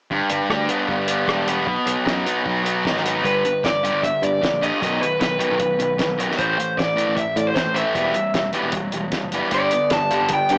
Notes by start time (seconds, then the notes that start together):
0.10 G1 G2, kick
0.29 G1 G3, closed hi-hat
0.49 D2 D4, kick, cross-stick
0.69 B3, closed hi-hat
0.89 G1 G3, kick
1.08 B3, closed hi-hat
1.28 E1 D4, kick, cross-stick
1.47 B3, closed hi-hat
1.66 B1 B2, kick
1.85 B1 F#3, closed hi-hat
2.05 F#2 D#4, kick, snare
2.25 B3, closed hi-hat
2.44 B1 F#3, kick
2.64 B3, closed hi-hat
2.84 G#1 D#4, kick, snare
2.97 snare
3.04 B3, closed hi-hat
3.24 G1 G2 D3 G3 B4, kick, closed hi-hat
3.45 G2 D3, closed hi-hat
3.64 G1 G2 D3 D5, kick, snare, closed hi-hat
3.83 G2 D3 G3, closed hi-hat
3.93 G1
4.03 G2 D3 E5, kick, closed hi-hat
4.22 G2 D3 D5, closed hi-hat
4.41 G2 D3, kick, snare, closed hi-hat
4.52 A#1
4.61 G2 D3 G3 D#5, closed hi-hat
4.81 B1 B2 D#3 F#3, kick, closed hi-hat
5.00 B2 D#3 B4, closed hi-hat
5.19 B1 B2 D#3 B4, kick, snare, closed hi-hat
5.39 B2 D#3 F#3, closed hi-hat
5.51 B1
5.60 B2 D#3, kick, closed hi-hat
5.79 B1 B2 D#3, closed hi-hat
5.98 B2 D#3, kick, snare, closed hi-hat
6.09 B1
6.18 B2 D#3 F#3, closed hi-hat
6.31 snare
6.38 A1 A2 E3 A3 C5, kick, closed hi-hat
6.58 A2 E3, closed hi-hat
6.77 A1 A2 E3 D5, kick, snare, closed hi-hat
6.96 A2 E3 A3, closed hi-hat
7.08 A1
7.15 A2 E3 E5, kick, closed hi-hat
7.36 A2 E3 D5, closed hi-hat
7.47 C5
7.55 A2 E3 C5, kick, snare, closed hi-hat
7.66 A1
7.74 A2 E3 A3 E5, closed hi-hat
7.95 E1 E3 G3 B3, kick, closed hi-hat
8.14 E3 G3, closed hi-hat
8.34 E1 E3 G3, kick, snare, closed hi-hat
8.53 E3 G3 B3, closed hi-hat
8.63 E1
8.72 E3 G3, kick, closed hi-hat
8.92 E1 E3 G3, closed hi-hat
9.12 E3 G3, kick, snare, closed hi-hat
9.23 F#1
9.32 E3 G3 B3, closed hi-hat
9.51 G1 G2 D3 G3 D5, kick, closed hi-hat
9.71 G2 D3 B3, closed hi-hat
9.90 G1 G2 D3 D4 A5, kick, snare, closed hi-hat
10.10 G2 D3 G3, closed hi-hat
10.21 G1
10.28 G2 D3 B3, kick, closed hi-hat
10.34 G5
10.49 G2 D3 G4, closed hi-hat
10.53 G5